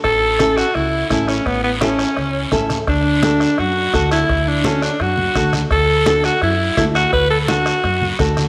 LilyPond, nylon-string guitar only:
\new Staff \with { instrumentName = "Nylon-string guitar" } { \time 4/4 \key a \major \tempo 4 = 169 r4 <cis' e' a'>8 r4. <cis' e' a'>8 r8 | r4 <cis' e' a'>8 r4. <cis' e' a'>8 r8 | r4 <d' fis' a'>8 r4. <d' fis' a'>8 r8 | r4 <d' fis' a'>8 r4. <d' fis' a'>8 r8 |
r4 <d' fis' a'>8 r4. <d' fis' a'>8 r8 | r4 <d' fis' a'>8 r4. <d' fis' a'>8 r8 | }